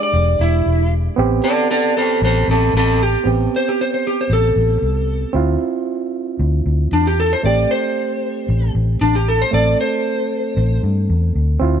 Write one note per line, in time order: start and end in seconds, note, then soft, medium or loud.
0.00 1.13 G#3 medium
0.00 1.14 D4 medium
0.00 1.15 G4 medium
0.00 0.40 D5 medium
0.13 0.34 E1 loud
0.39 0.60 E1 loud
0.39 0.91 E4 medium
0.66 1.07 E1 medium
1.16 1.39 A1 loud
1.16 3.21 B3 medium
1.16 3.22 C4 medium
1.16 3.23 G4 medium
1.44 1.69 A4 medium
1.44 1.69 D5 loud
1.71 1.95 A4 medium
1.71 1.96 D5 medium
1.97 2.21 A4 medium
1.97 2.22 C5 medium
2.22 2.42 A1 loud
2.22 2.47 A4 medium
2.22 2.49 C5 medium
2.48 2.68 A1 loud
2.48 2.73 C4 medium
2.48 2.75 A4 medium
2.73 3.15 A1 medium
2.73 3.00 C4 medium
2.73 3.01 A4 loud
3.03 3.27 G4 loud
3.24 3.46 A1 medium
3.24 5.30 B3 medium
3.24 5.30 C4 medium
3.24 5.31 G4 medium
3.56 3.67 C5 medium
3.69 3.79 G4 medium
3.81 3.93 C5 medium
3.94 4.05 C5 medium
4.07 4.19 G4 medium
4.21 4.32 C5 medium
4.30 4.51 A1 loud
4.30 5.33 A4 medium
4.56 4.77 A1 loud
4.82 5.24 C2 medium
5.33 5.55 D2 medium
5.33 7.39 C4 medium
5.33 7.40 E4 medium
5.33 7.40 F4 medium
6.39 6.60 D2 medium
6.66 6.86 D2 medium
6.92 7.33 E2 medium
6.92 7.05 D4 medium
7.07 7.18 G4 medium
7.20 7.32 A4 medium
7.33 7.44 C5 medium
7.43 7.65 A1 medium
7.43 9.48 A3 medium
7.43 9.49 C4 medium
7.43 9.50 G4 medium
7.43 7.70 D5 medium
7.71 8.72 C5 medium
8.49 8.69 A1 loud
8.75 8.95 A1 medium
9.01 9.42 A1 medium
9.01 9.14 D4 medium
9.15 9.27 G4 medium
9.28 9.41 A4 medium
9.42 9.53 C5 medium
9.51 9.74 A1 medium
9.51 11.57 A3 medium
9.51 11.58 C4 medium
9.51 11.59 A4 medium
9.51 9.79 D5 loud
9.81 10.81 C5 loud
10.57 10.78 A1 loud
10.83 11.07 G2 medium
11.09 11.33 E2 medium
11.35 11.59 D2 medium
11.59 11.80 D2 medium
11.59 11.80 C4 medium
11.59 11.80 E4 medium
11.59 11.80 F4 medium